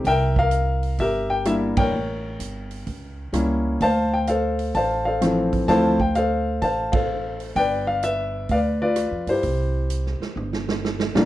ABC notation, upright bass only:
X:1
M:4/4
L:1/8
Q:"Swing" 1/4=128
K:Cmix
V:1 name="Upright bass" clef=bass
C,,4 G,,,3 B,,, | A,,,2 G,,,2 ^C,,2 C,,2 | D,,4 A,,,4 | D,,4 A,,,4 |
G,,,4 D,,2- (3D,, F,, G,, | C,,3 z G,,,3 B,,, |]